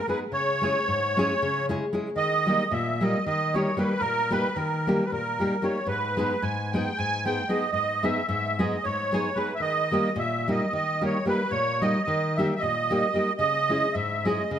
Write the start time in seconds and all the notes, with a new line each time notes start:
0.07 G#3 B3 D#4 G#4 B4
0.32 C#3 C#5
0.61 G#3 C#4 E4 G#4
0.88 G#2
1.17 G#3 C#4 E4 G#4
1.42 C#3
1.69 G#3 C#4 E4 G#4
1.93 G#3 C#4 E4 G#4
2.16 D#3 D#5
2.46 G3 A#3 D#4 G4
2.71 A#2 E5
3.01 G3 A#3 D#4 G4 D#5
3.26 D#3 D#5
3.54 G3 A#3 D#4 G4 C#5
3.77 G3 A#3 D#4 G4 B4
3.99 A#2 A#4
4.30 G3 A#3 D#4 G4 B4
4.54 D#3 A#4
4.87 G3 A#3 D#4 G4
5.05 B4
5.12 A#2 A#4
5.39 G3 A#3 D#4 G4
5.62 G3 A#3 D#4 G4 C#5
5.87 G#2 B4
6.17 G#3 B3 D#4 G#4
6.42 G#2 G#5
6.72 G#3 B3 D#4 G#4 G5
6.97 G#2 G#5
7.25 G#3 B3 D#4 G#4 G5
7.49 G#3 B3 D#4 G#4 D#5
7.72 G#2 D#5
8.02 G#3 B3 D#4 G#4 E5
8.28 G#2 E5
8.59 G#3 B3 D#4 G#4 D#5
8.84 G#2 C#5
9.12 G#3 B3 D#4 G#4
9.35 G#3 B3 D#4 G#4 B4
9.55 E5
9.60 D#3 D#5
9.91 G3 A#3 D#4 G4
10.16 A#2 E5
10.48 G3 A#3 D#4 G4 D#5
10.73 D#3 D#5
11.01 G3 A#3 D#4 G4 C#5
11.25 G3 A#3 D#4 G4 B4
11.50 A#2 C#5
11.81 G3 A#3 D#4 G4 D#5
12.04 D#3 D#5
12.36 G3 A#3 D#4 G4 E5
12.55 E5
12.59 A#2 D#5
12.90 G3 A#3 D#4 G4
13.14 G3 A#3 D#4 G4
13.38 C#3 D#5
13.69 G#3 C#4 E4 G#4
13.93 G#2 E5
14.24 G#3 C#4 E4 G#4 D#5
14.51 C#3 D#5